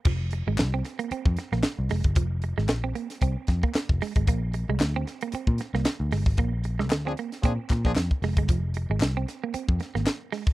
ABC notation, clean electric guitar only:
X:1
M:4/4
L:1/16
Q:"Swing 16ths" 1/4=114
K:Fdor
V:1 name="Clean electric guitar"
F, z2 A, z C z B, C z2 B, z2 A, z | F, z2 A, z C B, z C z2 B, z2 A, A, | B, z2 A, z C z B, C z2 B, z2 A, z | B, z2 A, z C B, z C z2 B, z2 A, A, |
F, z2 A, z C z B, C z2 B, z2 A, z |]